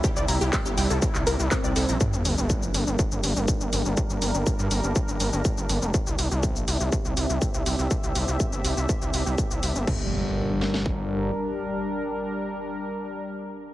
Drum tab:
CC |----------------|----------------|----------------|----------------|
HH |--o---o---o---o-|--o---o---o---o-|--o---o---o---o-|--o---o---o---o-|
SH |xxxxxxxxxxxxxxxx|xxxxxxxxxxxxxxxx|xxxxxxxxxxxxxxxx|xxxxxxxxxxxxxxxx|
CP |----x----x--x---|----------------|----------------|----------------|
SD |----------------|----------------|----------------|----------------|
BD |o---o---o---o---|o---o---o---o---|o---o---o---o---|o---o---o---o---|

CC |----------------|x---------------|----------------|
HH |--o---o---o---o-|----------------|----------------|
SH |xxxxxxxxxxxxxxxx|----------------|----------------|
CP |----------------|----------------|----------------|
SD |----------------|------oo--------|----------------|
BD |o---o---o---o---|o-------o-------|----------------|